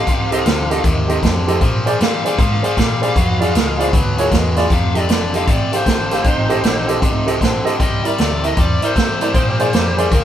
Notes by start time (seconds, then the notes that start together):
Already playing: F5
0.07 C2 F2 C3, kick, closed hi-hat
0.31 F2 C3 C4 G4 A4 D#5, closed hi-hat
0.46 D2 F2 D3 F3, snare, closed hi-hat
0.70 F2 D3 D#3 G4 A4 D#5, closed hi-hat
0.84 D#2 F2 C3, kick, closed hi-hat
1.08 F2 C3 D#3 G4 A4 D#5, closed hi-hat
1.23 F2 C3 D3, kick, snare, closed hi-hat
1.47 F2 D3 G4 A4 D#5, closed hi-hat
1.61 A#2 F3, kick, closed hi-hat
1.86 A#2 F3 G#4 C5 D5, closed hi-hat
2.00 G2 A#2 G3 F5, snare, closed hi-hat
2.15 F5
2.24 A#2 G3 G#4 C5 D5, closed hi-hat
2.28 F5
2.39 G#2 A#2 F3 F5, kick, closed hi-hat
2.53 F5
2.62 A#2 F3 G#4 C5 D5, muted fingered electric bass stroke, closed hi-hat
2.66 F5
2.77 A#2 G3 F5, kick, snare, closed hi-hat
3.01 A#2 G3 G#4 C5 D5, closed hi-hat
3.16 F2 B2 F#3, kick, closed hi-hat
3.39 B2 F#3 F4 G#4 D5, closed hi-hat
3.54 C#2 B2 G#3, snare, closed hi-hat
3.79 B2 G#3 C4 F4 G#4 D5, closed hi-hat
3.93 D2 B2 F#3 B3, kick, closed hi-hat
4.18 B2 F#3 A#3 F4 G#4 C#5, closed hi-hat
4.31 E2 B2 G#3 B3, kick, snare, closed hi-hat
4.56 B2 G#3 F4 G#4 D5, snare, closed hi-hat
4.70 F2 C3 F5, kick, closed hi-hat
4.95 F2 C3 G4 A4 D5 D#5, closed hi-hat
5.08 F1 F2 D3, snare, closed hi-hat
5.34 F2 D3 G4 A4 D#5 F5, closed hi-hat
5.47 A1 F2 C3 D5, kick, closed hi-hat
5.72 F2 C3 G4 A4 C5 F5, closed hi-hat
5.86 G1 F2 D3, kick, snare, closed hi-hat
6.11 F2 D3 G4 A4 F5, snare, closed hi-hat
6.24 A1 F2 C3 D#4, kick, closed hi-hat
6.49 F2 C3 C4 G4 A4 D#5, closed hi-hat
6.63 A#1 F2 D3 D#4, snare, closed hi-hat
6.87 F2 D3 C4 G4 A4 D#5, closed hi-hat
7.01 C2 F2 C3 D#4, kick, closed hi-hat
7.26 F2 C3 C4 G4 A4 D#5, closed hi-hat
7.41 A#1 F2 D3 C4, kick, snare, closed hi-hat
7.64 F2 D3 G4 A4 D#5, closed hi-hat
7.79 C2 C3 G3 D#5, kick, closed hi-hat
8.04 C3 G3 E4 A#4 D5, closed hi-hat
8.18 D2 C3 A3, snare, closed hi-hat
8.43 C3 A3 E4 A#4 D#5 E5, closed hi-hat
8.57 E2 C3 G3 D5, kick, closed hi-hat
8.82 C3 G3 E4 A#4 C5 D5, closed hi-hat
8.96 G2 C3 A3, kick, snare, closed hi-hat
9.21 C3 A3 E4 A#4 D5, closed hi-hat
9.34 A#2 F3 C4, kick, closed hi-hat
9.48 G3
9.59 A#2 F3 A#3 G#4 C5 D5, closed hi-hat
9.73 F2 A#2 G3 C4, snare, closed hi-hat
9.87 G3
9.97 A#2 G3 A#3 G#4 C5 D5, closed hi-hat
10.11 D2 A#2 F3 A#3, kick, closed hi-hat